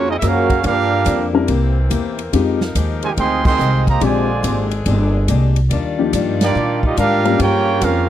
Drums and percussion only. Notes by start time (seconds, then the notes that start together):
0.22 kick, hi-hat pedal, ride
0.50 kick, ride
0.64 kick, ride
1.06 kick, hi-hat pedal, ride
1.48 kick, ride
1.91 kick, hi-hat pedal, ride
2.19 ride
2.33 kick, ride
2.61 snare
2.75 kick, hi-hat pedal, ride
3.02 ride
3.17 kick, ride
3.45 kick, crash
3.60 hi-hat pedal
3.87 kick, ride
4.01 kick, ride
4.44 kick, hi-hat pedal, ride
4.71 ride
4.86 kick, ride
5.28 kick, hi-hat pedal, ride
5.56 ride
5.71 kick, ride
6.13 kick, hi-hat pedal, ride
6.41 snare, ride
6.83 kick
6.97 kick, hi-hat pedal, ride
7.25 ride
7.40 kick, ride
7.81 kick, hi-hat pedal, ride